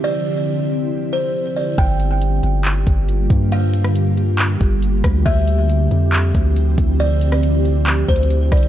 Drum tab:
HH |------------------------------------------------------------------------------------------------|x-----------x-----------x-----------x-----------x-----------x-----------x-----------x-----------|x-----------x-----------x-----------x-----------x-----------x-----------x-----------x-----------|x-----------x-----------x-----------x-----------x-----------x-----------x-----------x-----------|
CP |------------------------------------------------------------------------------------------------|------------------------------------------------x-----------------------------------------------|------------------------------------------------x-----------------------------------------------|------------------------------------------------x-----------------------------------------------|
SD |------------------------------------------------------------------------------------------------|------------------------------------------------------------------------------------------------|------------------r-----------------------------------------------------------------r-----------|------------------------------------------------------------------------------------------------|
BD |------------------------------------------------------------------------------------------------|o-----------------------------------------------------------o-----------------------o-----------|------------------------------------------------------------o-----------------------o-----------|o-----------------------------------------------------------o-----------------------o-----------|

HH |x-----------x-----------x-----------x-----------x-----------x---x---x---x-----------x--x--x-----|
CP |------------------------------------------------x-----------------------------------------------|
SD |------------------r-----------------------------------------------------------------r-----------|
BD |------------------------------------------------------------o-----------------------o-----------|